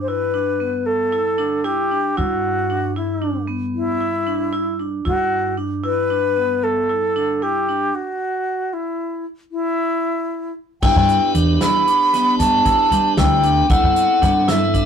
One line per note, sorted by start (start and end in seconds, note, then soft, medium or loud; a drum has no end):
0.00 2.13 G2 medium
0.00 0.09 C5 medium
0.08 0.31 E4 medium
0.08 0.87 B4 medium
0.34 0.57 D4 medium
0.60 1.07 B3 soft
0.86 1.66 A4 medium
1.12 1.36 E4 medium
1.38 1.62 D4 medium
1.64 1.88 E4 medium
1.64 2.18 G4 medium
1.91 2.15 D4 medium
2.16 5.02 G2 medium
2.16 2.64 E4 medium
2.16 2.96 F#4 medium
2.70 2.93 D4 medium
2.96 3.20 E4 medium
2.96 3.45 E4 medium
3.22 3.45 D4 medium
3.48 3.95 B3 medium
3.75 4.76 E4 medium
4.01 4.24 E4 medium
4.27 4.50 D4 medium
4.53 4.76 E4 medium
4.79 5.03 D4 medium
5.05 7.90 G2 medium
5.05 5.53 E4 medium
5.05 5.54 F#4 medium
5.57 5.81 D4 medium
5.83 6.07 E4 medium
5.83 6.65 B4 medium
6.10 6.34 D4 medium
6.36 6.84 B3 medium
6.63 7.44 A4 medium
6.89 7.13 E4 medium
7.16 7.39 D4 medium
7.42 7.66 E4 medium
7.42 7.96 G4 medium
7.69 7.92 D4 medium
7.95 8.75 F#4 medium
8.73 9.25 E4 medium
9.51 10.52 E4 medium
10.82 10.93 G2 medium
10.82 13.66 B3 soft
10.82 13.66 D4 medium
10.82 11.29 E4 medium
10.82 13.67 G4 soft
10.82 13.67 B4 medium
10.82 11.31 G5 medium
10.82 kick medium
10.82 crash medium
10.96 11.17 G2 medium
11.09 closed hi-hat soft
11.34 11.56 E2 medium
11.34 11.58 D4 medium
11.34 closed hi-hat medium
11.61 11.84 E4 medium
11.61 12.35 B5 loud
11.61 snare medium
11.61 closed hi-hat medium
11.87 12.11 D4 medium
11.87 closed hi-hat medium
12.14 12.60 B3 medium
12.14 snare soft
12.14 closed hi-hat medium
12.39 12.61 G2 medium
12.39 13.13 A5 medium
12.39 snare soft
12.39 closed hi-hat medium
12.65 12.76 G2 medium
12.65 12.89 E4 medium
12.65 kick medium
12.65 closed hi-hat medium
12.91 13.13 G3 medium
12.91 13.15 D4 medium
12.91 closed hi-hat medium
13.17 13.60 D2 medium
13.17 13.41 E4 medium
13.17 13.72 G5 medium
13.17 snare medium
13.17 closed hi-hat medium
13.43 13.67 D4 medium
13.43 closed hi-hat soft
13.68 13.81 G2 medium
13.68 14.85 B3 soft
13.68 14.85 C4 medium
13.68 14.85 E4 soft
13.68 14.17 E4 medium
13.68 14.85 A4 medium
13.68 14.51 F#5 medium
13.68 kick medium
13.68 closed hi-hat medium
13.83 14.04 G2 medium
13.96 closed hi-hat soft
14.22 14.85 G2 loud
14.22 14.46 D4 medium
14.22 snare soft
14.22 closed hi-hat soft
14.48 14.72 E4 medium
14.48 14.85 E5 medium
14.48 snare medium
14.48 closed hi-hat medium
14.74 14.85 D4 medium
14.74 kick medium
14.74 closed hi-hat soft